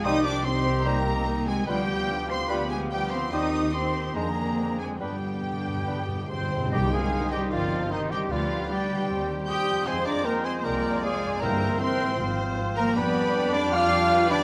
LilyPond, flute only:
\new Staff \with { instrumentName = "Flute" } { \time 4/4 \key c \minor \tempo 4 = 151 ees'''8 d'''8 c'''4 bes''4. aes''8 | g''4. c'''8 b''8 aes''8 g''8 c'''8 | ees'''4 c'''4 bes''4. aes''8 | g''2. g''4 |
ees''8 f''4 ees''8 d''4 c''8 ees''8 | d''4 d''4. r8 ees'''4 | aes''8 bes''8 g''8 aes''8 g''4 f''4 | g''4 g''4. r4 g''8 |
g''4. b''8 d'''4. b''8 | }